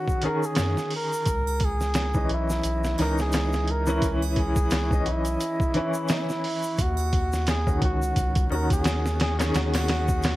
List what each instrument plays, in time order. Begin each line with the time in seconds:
Already playing: upright piano D#3 C#4 F#4, muted trumpet F#4
0.08 kick, shaker
0.22 upright piano D#3 C#4, muted trumpet A#4, closed hi-hat
0.26 upright piano G#4
0.43 muted trumpet G#4, shaker
0.55 analog synth bass F#2, snare, closed hi-hat, shaker
0.77 snare, shaker
0.91 open hi-hat
0.96 muted trumpet A#4
1.13 shaker
1.25 analog synth bass C#2, kick, closed hi-hat, shaker
1.47 triangle, shaker
1.60 kick, closed hi-hat
1.65 muted trumpet G#4
1.81 snare, shaker
1.94 snare, closed hi-hat, shaker
2.14 upright piano E3 C#4 D#5, kick, shaker
2.29 analog synth bass B1, closed hi-hat
2.34 muted trumpet E4
2.50 snare, shaker
2.64 analog synth bass B1, closed hi-hat, shaker
2.84 snare, shaker
2.98 analog synth bass C#2, upright piano E3 C#4 D#4, muted trumpet A#4, snare, closed hi-hat, triangle
3.18 muted trumpet G#4, snare, shaker
3.32 snare, closed hi-hat, shaker
3.53 snare, shaker
3.67 muted trumpet A#4, closed hi-hat
3.86 upright piano E3 C#4 E4, shaker
4.02 analog synth bass C#2, kick, closed hi-hat, shaker
4.22 triangle, shaker
4.36 muted trumpet G#4, kick, closed hi-hat
4.56 kick, shaker
4.71 snare, closed hi-hat, shaker
4.91 upright piano E3 C#4 D#5, kick, shaker
5.06 analog synth bass B1, muted trumpet E4, closed hi-hat
5.25 closed hi-hat, shaker
5.40 closed hi-hat, shaker
5.60 kick, shaker
5.74 upright piano E3 C#4 E4, closed hi-hat
5.94 shaker
6.08 muted trumpet E4, snare, closed hi-hat, shaker
6.29 snare, shaker
6.44 open hi-hat
6.63 shaker
6.78 analog synth bass D#2, muted trumpet F#4, kick, closed hi-hat, shaker
6.97 triangle, shaker
7.13 kick, closed hi-hat
7.33 snare, shaker
7.47 muted trumpet G#4, snare, closed hi-hat, shaker
7.67 upright piano D#3 C#4 F#4, kick, shaker
7.82 analog synth bass C#2, muted trumpet F#4, kick, closed hi-hat
8.02 shaker
8.16 analog synth bass C#2, kick, closed hi-hat, shaker
8.35 kick, closed hi-hat, shaker
8.50 analog synth bass D#2, upright piano D#3 C#4 F#4, muted trumpet A#4, triangle
8.70 muted trumpet G#4, kick, closed hi-hat, shaker
8.84 snare, closed hi-hat, shaker
9.06 snare, shaker
9.20 muted trumpet G#4, snare, closed hi-hat
9.39 upright piano D#3 C#4 G#4, snare, closed hi-hat, shaker
9.55 analog synth bass D#2, muted trumpet F#4, snare, closed hi-hat, shaker
9.74 snare, closed hi-hat, triangle, shaker
9.88 snare, closed hi-hat
10.08 kick, shaker
10.23 snare, closed hi-hat, shaker